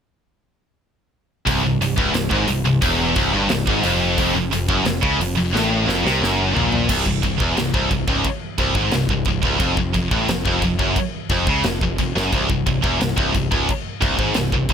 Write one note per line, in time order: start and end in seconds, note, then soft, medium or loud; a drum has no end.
1.47 1.62 C1 medium
1.47 1.63 C2 loud
1.47 kick loud
1.47 open hi-hat medium
1.63 1.78 C1 medium
1.63 1.78 C2 medium
1.79 1.96 C1 medium
1.79 1.95 C2 medium
1.79 open hi-hat medium
1.98 2.12 C#1 medium
1.98 2.14 C#2 loud
1.98 kick loud
2.13 2.29 C1 medium
2.13 2.28 C2 medium
2.13 snare loud
2.13 open hi-hat medium
2.31 2.47 G#1 medium
2.31 2.48 G#2 loud
2.31 kick loud
2.47 2.64 C1 medium
2.47 2.62 C2 medium
2.47 open hi-hat medium
2.65 2.81 C1 medium
2.65 2.79 C2 medium
2.82 3.14 E1 medium
2.82 3.16 E2 loud
2.82 kick loud
2.82 open hi-hat medium
3.16 3.32 C1 medium
3.16 3.33 C2 loud
3.16 kick loud
3.16 open hi-hat medium
3.33 3.49 G1 medium
3.33 3.50 G2 loud
3.49 3.66 C1 medium
3.49 3.64 C2 medium
3.49 snare loud
3.49 open hi-hat medium
3.67 3.83 G#1 medium
3.67 3.84 G#2 loud
3.67 kick loud
3.83 4.15 F1 loud
3.83 4.17 F2 loud
3.83 open hi-hat medium
4.18 4.34 F1 medium
4.18 4.34 F2 loud
4.18 kick loud
4.18 open hi-hat medium
4.34 4.50 F1 medium
4.34 4.48 F2 medium
4.50 4.67 F1 medium
4.50 4.66 F2 medium
4.50 open hi-hat medium
4.69 4.84 F#1 medium
4.69 4.86 F#2 medium
4.69 kick loud
4.85 5.01 F1 medium
4.85 5.00 F2 medium
4.85 snare loud
4.85 open hi-hat medium
5.03 5.17 C#2 loud
5.03 5.19 C#3 loud
5.03 kick loud
5.18 5.34 F1 medium
5.18 5.34 F2 medium
5.18 open hi-hat medium
5.35 5.51 F1 medium
5.35 5.51 F2 medium
5.53 5.85 A1 medium
5.53 5.87 A2 loud
5.53 snare medium
5.87 6.03 F1 medium
5.87 6.05 F2 loud
5.87 snare medium
6.04 6.20 C2 medium
6.04 6.22 C3 loud
6.04 snare medium
6.21 6.53 F#1 loud
6.21 6.55 F#2 loud
6.21 snare medium
6.55 6.87 A#1 medium
6.55 6.89 A#2 loud
6.55 floor tom medium
6.72 floor tom medium
6.89 7.05 C1 medium
6.89 7.06 C2 loud
6.89 kick loud
6.89 crash loud
6.89 china medium
7.06 7.22 C1 medium
7.06 7.20 C2 medium
7.06 kick medium
7.23 7.39 C1 medium
7.23 7.37 C2 medium
7.23 kick medium
7.23 china medium
7.40 7.56 E1 medium
7.40 7.57 E2 loud
7.40 kick loud
7.57 7.73 C1 medium
7.57 7.71 C2 medium
7.57 snare loud
7.57 china medium
7.74 7.89 C1 medium
7.74 7.89 C2 loud
7.74 kick loud
7.90 8.06 C1 medium
7.90 8.04 C2 medium
7.90 kick medium
7.90 china medium
8.08 8.23 C#1 medium
8.08 8.25 C#2 loud
8.08 kick loud
8.24 kick loud
8.24 china medium
8.58 8.74 C1 medium
8.58 8.75 C2 loud
8.58 kick loud
8.58 china medium
8.75 8.91 G#1 medium
8.75 8.93 G#2 loud
8.75 kick loud
8.91 9.08 C1 medium
8.91 9.07 C2 medium
8.91 snare loud
8.91 china medium
9.09 9.25 C1 medium
9.09 9.24 C2 medium
9.09 kick medium
9.25 9.42 C1 medium
9.25 9.41 C2 medium
9.25 kick medium
9.25 china soft
9.42 9.59 C#1 loud
9.42 9.60 C#2 medium
9.42 kick loud
9.60 9.76 F1 medium
9.60 9.77 F2 loud
9.60 kick loud
9.60 china medium
9.77 9.93 F1 medium
9.77 9.91 F2 medium
9.77 kick medium
9.94 10.10 F1 medium
9.94 10.08 F2 medium
9.94 kick medium
9.94 china soft
10.11 10.26 A1 medium
10.11 10.28 A2 loud
10.11 kick loud
10.27 10.43 F1 medium
10.27 10.42 F2 medium
10.27 snare loud
10.27 china medium
10.45 10.61 F1 medium
10.45 10.61 F2 loud
10.45 kick medium
10.62 10.78 F1 medium
10.62 10.77 F2 medium
10.62 kick medium
10.62 china medium
10.79 10.95 F#1 medium
10.79 10.95 F#2 loud
10.79 kick loud
10.96 kick loud
10.96 china medium
11.29 11.45 F1 medium
11.29 11.47 F2 loud
11.29 kick loud
11.29 china soft
11.47 11.63 C#2 medium
11.47 11.64 C#3 medium
11.47 kick loud
11.64 11.79 F1 medium
11.64 11.78 F2 medium
11.64 snare loud
11.64 china medium
11.81 11.97 F1 medium
11.81 11.95 F2 medium
11.81 kick medium
11.98 12.14 F1 medium
11.98 12.12 F2 medium
11.98 kick medium
11.98 china medium
12.15 12.31 F#1 medium
12.15 12.31 F#2 loud
12.15 snare medium
12.32 12.47 C1 medium
12.32 12.49 C2 loud
12.32 kick loud
12.32 china medium
12.50 12.65 C1 medium
12.50 12.63 C2 medium
12.50 kick medium
12.66 12.82 C1 medium
12.66 12.79 C2 medium
12.66 kick medium
12.66 china soft
12.83 12.98 E1 medium
12.83 12.99 E2 medium
12.83 kick loud
13.00 13.16 C1 medium
13.00 13.13 C2 medium
13.00 snare loud
13.00 china medium
13.16 13.32 C1 loud
13.16 13.33 C2 loud
13.16 kick loud
13.34 13.49 C1 medium
13.34 13.48 C2 medium
13.34 kick medium
13.34 china medium
13.51 13.67 C#1 loud
13.51 13.67 C#2 loud
13.51 kick loud
13.69 kick loud
13.69 china medium
14.01 14.17 C1 medium
14.01 14.17 C2 loud
14.01 kick loud
14.01 china medium
14.18 14.34 G#1 medium
14.18 14.34 G#2 loud
14.18 kick loud
14.34 14.51 C1 medium
14.34 14.49 C2 medium
14.34 snare loud
14.34 china medium
14.52 14.67 C1 medium
14.52 14.66 C2 medium
14.52 kick medium
14.68 14.73 C1 medium
14.68 14.73 C2 medium
14.68 kick medium
14.68 china medium